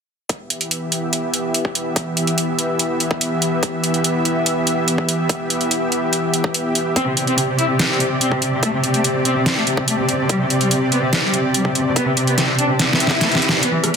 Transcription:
0.29 E3 B3 G4 E5, kick, closed hi-hat
0.50 closed hi-hat
0.61 closed hi-hat
0.71 closed hi-hat
0.92 closed hi-hat
1.13 closed hi-hat
1.34 closed hi-hat
1.54 closed hi-hat
1.65 kick
1.75 closed hi-hat
1.96 kick, closed hi-hat
2.17 closed hi-hat
2.27 closed hi-hat
2.38 closed hi-hat
2.59 closed hi-hat
2.79 closed hi-hat
3.00 closed hi-hat
3.11 kick
3.21 closed hi-hat
3.42 closed hi-hat
3.63 kick, closed hi-hat
3.84 closed hi-hat
3.94 closed hi-hat
4.04 closed hi-hat
4.25 closed hi-hat
4.46 closed hi-hat
4.67 closed hi-hat
4.88 closed hi-hat
4.98 kick
5.09 closed hi-hat
5.29 kick, closed hi-hat
5.50 closed hi-hat
5.61 closed hi-hat
5.71 closed hi-hat
5.92 closed hi-hat
6.13 closed hi-hat
6.34 closed hi-hat
6.44 kick
6.54 closed hi-hat
6.75 closed hi-hat
6.96 C3 C4 D5, kick, closed hi-hat
7.07 C3
7.17 C3, closed hi-hat
7.27 C4, closed hi-hat
7.38 C3, closed hi-hat
7.48 C3
7.59 E4, closed hi-hat
7.69 C3
7.79 C3, snare, closed hi-hat
7.90 C4
8.00 C3, closed hi-hat
8.11 C3
8.21 C4, closed hi-hat
8.31 C3, kick
8.42 C3, closed hi-hat
8.52 C3
8.63 A3, kick, closed hi-hat
8.73 C3
8.84 C3, closed hi-hat
8.94 A3, closed hi-hat
9.04 C3, closed hi-hat
9.15 C3
9.25 C4, closed hi-hat
9.36 C3
9.46 C3, snare, closed hi-hat
9.57 A3
9.67 C3, closed hi-hat
9.77 C3, kick
9.88 A3, closed hi-hat
9.98 C3
10.09 C3, closed hi-hat
10.19 C3
10.29 G3, kick, closed hi-hat
10.40 C3
10.50 C3, closed hi-hat
10.61 G3, closed hi-hat
10.71 C3, closed hi-hat
10.82 C3
10.92 B3, closed hi-hat
11.02 C3
11.13 C3, snare, closed hi-hat
11.23 G3
11.34 C3, closed hi-hat
11.44 C3
11.54 G3, closed hi-hat
11.65 C3, kick
11.75 C3, closed hi-hat
11.86 C3
11.96 B3, kick, closed hi-hat
12.07 C3
12.17 C3, closed hi-hat
12.27 B3, closed hi-hat
12.38 C3, snare, closed hi-hat
12.48 C3
12.59 D4, closed hi-hat
12.69 C3
12.79 C3, snare, closed hi-hat, swell
12.90 B3, snare
13.00 C3, closed hi-hat
13.07 C3, kick, snare
13.21 A3, snare, closed hi-hat
13.32 C3, snare, closed hi-hat
13.42 C3, closed hi-hat
13.49 C3, snare
13.63 E3 B3 G4 E5, closed hi-hat, riser
13.73 E3
13.84 E3, cross-stick, closed hi-hat

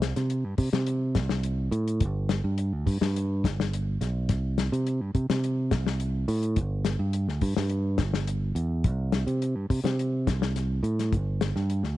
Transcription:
Already playing: C2
0.02 snare, closed hi-hat
0.16 C3, snare, closed hi-hat
0.30 closed hi-hat
0.44 G2
0.58 C3, kick, open hi-hat
0.73 C3, snare, closed hi-hat
0.87 closed hi-hat
1.15 C2, kick, snare, closed hi-hat
1.29 snare
1.43 closed hi-hat
1.71 A2, closed hi-hat
1.88 closed hi-hat
2.00 G1, kick, closed hi-hat
2.29 snare, closed hi-hat
2.44 G2
2.58 closed hi-hat
2.73 D2
2.86 G2, kick, open hi-hat
3.01 G2, snare
3.16 closed hi-hat
3.44 G1, kick, snare, closed hi-hat
3.60 snare
3.73 closed hi-hat
4.01 B1, snare, closed hi-hat
4.29 C2, kick, snare, closed hi-hat
4.58 snare, closed hi-hat
4.72 C3, closed hi-hat
4.87 closed hi-hat
5.01 G2
5.15 C3, kick, closed hi-hat
5.30 C3, snare, closed hi-hat
5.44 closed hi-hat
5.71 C2, kick, snare, closed hi-hat
5.87 snare
6.00 closed hi-hat
6.28 A2, open hi-hat
6.43 closed hi-hat
6.56 G1, kick, closed hi-hat
6.85 snare, closed hi-hat
6.99 G2
7.13 closed hi-hat
7.28 D2, snare
7.41 G2, kick, open hi-hat
7.57 G2, snare
7.70 closed hi-hat
7.98 G1, kick, snare, closed hi-hat
8.14 snare
8.27 closed hi-hat
8.55 E2, closed hi-hat
8.84 C2, kick, closed hi-hat
9.12 snare, closed hi-hat
9.27 C3, closed hi-hat
9.42 closed hi-hat
9.55 G2
9.70 C3, kick, open hi-hat
9.84 C3, snare, closed hi-hat
9.99 closed hi-hat
10.27 C2, kick, snare, closed hi-hat
10.42 snare
10.56 snare, closed hi-hat
10.83 A2, closed hi-hat
10.99 snare, closed hi-hat
11.13 G1, kick, closed hi-hat
11.41 snare, closed hi-hat
11.56 G2, snare
11.70 closed hi-hat
11.83 D2, snare

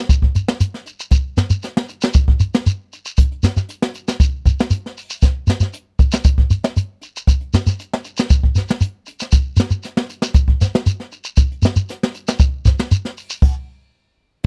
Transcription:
0.09 kick, closed hi-hat, shekere
0.22 kick
0.35 closed hi-hat, shekere
0.48 snare, shekere
0.60 closed hi-hat, shekere
0.74 snare
0.86 closed hi-hat, shekere
1.00 shekere
1.11 kick, closed hi-hat, shekere
1.37 snare, closed hi-hat, shekere
1.50 shekere
1.63 snare, closed hi-hat, shekere
1.77 snare
1.89 closed hi-hat, shekere
2.02 snare, shekere
2.14 kick, closed hi-hat, shekere
2.28 kick, closed hi-hat
2.40 closed hi-hat, shekere
2.54 snare, shekere
2.66 closed hi-hat, shekere
2.93 closed hi-hat, shekere
3.05 shekere
3.17 kick, closed hi-hat, shekere
3.32 closed hi-hat
3.43 snare, closed hi-hat, shekere
3.57 snare, shekere
3.69 closed hi-hat, shekere
3.82 snare
3.94 closed hi-hat, shekere
4.07 snare, closed hi-hat, shekere
4.20 kick, closed hi-hat, shekere
4.45 kick, closed hi-hat, shekere
4.59 snare, shekere
4.70 closed hi-hat, shekere
4.86 snare
4.97 open hi-hat, shekere
5.10 shekere
5.22 kick, snare, closed hi-hat, shekere
5.47 snare, closed hi-hat, shekere
5.60 snare, shekere
5.73 closed hi-hat, shekere
5.99 kick, closed hi-hat, shekere
6.12 snare, shekere
6.24 kick, closed hi-hat, shekere
6.38 kick, closed hi-hat
6.50 closed hi-hat, shekere
6.63 snare, closed hi-hat, shekere
6.77 closed hi-hat, shekere
7.01 closed hi-hat, shekere
7.17 shekere
7.27 kick, closed hi-hat, shekere
7.41 closed hi-hat
7.54 snare, closed hi-hat, shekere
7.67 snare, shekere
7.79 closed hi-hat, shekere
7.93 snare
8.04 closed hi-hat, shekere
8.17 snare, shekere
8.30 kick, closed hi-hat, shekere
8.43 kick
8.55 snare, closed hi-hat, shekere
8.68 snare, shekere
8.81 closed hi-hat, shekere
9.06 closed hi-hat, shekere
9.20 snare, shekere
9.32 kick, closed hi-hat, shekere
9.57 snare, closed hi-hat, shekere
9.70 shekere
9.83 snare, closed hi-hat, shekere
9.97 snare
10.09 closed hi-hat, shekere
10.22 snare, shekere
10.34 kick, closed hi-hat, shekere
10.48 kick, closed hi-hat
10.60 snare, closed hi-hat, shekere
10.74 snare, closed hi-hat, shekere
10.86 closed hi-hat, shekere
11.00 snare
11.12 closed hi-hat, shekere
11.24 shekere
11.37 kick, closed hi-hat, shekere
11.52 closed hi-hat
11.62 snare, closed hi-hat, shekere
11.76 shekere
11.89 snare, closed hi-hat, shekere
12.03 snare
12.15 closed hi-hat, shekere
12.28 snare, closed hi-hat, shekere
12.39 kick, closed hi-hat, shekere
12.65 kick, snare, closed hi-hat, shekere
12.79 snare, shekere
12.91 closed hi-hat, shekere
13.05 snare
13.17 open hi-hat, shekere
13.30 shekere
13.42 kick, crash

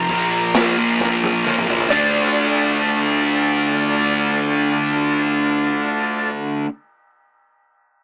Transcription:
Already playing: A#5
0.09 A#2 F3 A#3 F4 A#4 D5, kick, open hi-hat
0.54 A#2 F3 A#3, snare, open hi-hat
0.78 A#2 F3 A#3
1.00 A#2 F3 A#3, kick, snare
1.24 high tom
1.45 A#2 F3 A#3, mid tom
1.58 mid tom
1.67 A#2 F3 A#3, floor tom
1.80 floor tom
1.89 D3 A3 D4 F4 A4 D5, kick, ride bell

